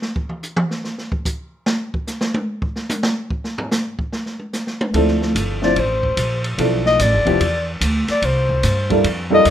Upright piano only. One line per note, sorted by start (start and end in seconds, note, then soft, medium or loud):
4.93 5.57 F3 medium
4.93 5.57 C4 medium
4.93 5.57 D4 medium
4.93 5.57 E4 medium
4.93 5.58 A4 medium
5.62 5.75 F3 medium
5.62 5.75 C4 medium
5.62 5.76 D4 medium
5.62 5.75 E4 medium
5.62 5.76 C5 medium
6.58 7.21 F3 medium
6.58 7.21 B3 medium
6.58 7.21 D4 medium
6.58 7.21 E4 medium
6.58 7.22 A4 medium
7.25 7.39 F3 medium
7.25 7.39 B3 medium
7.25 7.39 D4 medium
7.25 7.40 E4 medium
7.25 7.40 G4 medium
8.90 9.03 G3 medium
8.90 9.03 A#3 medium
8.90 9.03 D4 medium
8.90 9.03 E4 medium
8.90 9.04 A4 medium
9.30 9.50 G3 medium
9.30 9.50 A#3 medium
9.30 9.50 D4 medium
9.30 9.50 E4 medium
9.30 9.50 A4 medium